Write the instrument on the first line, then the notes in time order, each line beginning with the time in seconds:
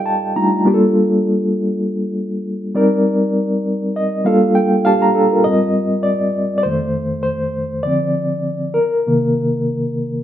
reed electric piano
Already playing: G3 D#4 F4 G4 A4 D5 D#5 F5 G5
0.06 A5
0.36 G3 A3 D4 D#4 F4 A#5
0.65 G3 A#3 D4 F4 G4
0.74 A4
2.75 G3 C4 D#4 A#4 D5
3.96 D#5
4.25 G3 A#3 D4 F4 A4 F5
4.55 G5
4.85 D4 G4 F5 A5
5.02 A#5
5.15 D4 A4
5.32 F4 A#4
5.44 G#2 G3 C4 D#5
6.03 D5
6.58 D5
6.63 F2 D#3 A3 C5
7.23 C5
7.83 D3 F3 C4 D5
8.74 A#4
9.07 C3 D#3 A#3